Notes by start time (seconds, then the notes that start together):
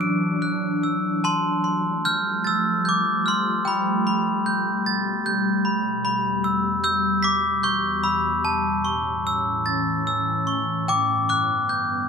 Already playing: E3 F#3 D4 D6 E6 F#6
0.01 D7
0.42 F#6
0.83 E6
1.24 F3 G3 A3 A5 C6
1.64 C6
2.05 F6 G6
2.44 E6 A6
2.85 D6 G6
3.26 C6 F6
3.65 B2 G5 B5
4.07 B5
4.46 G6
4.86 A6
5.26 G6
5.65 B5
6.05 E2 B2 B5
6.44 E6
6.84 E6 G6
7.23 D6 B6
7.63 C#6 G6
8.04 B5 E6
8.44 A2 E3 C#4 A5
8.85 C#6
9.27 E6
9.66 A6
10.07 E6
10.47 C#6
10.88 G2 D3 B3 G5 D6
11.29 D6 F#6
11.69 G6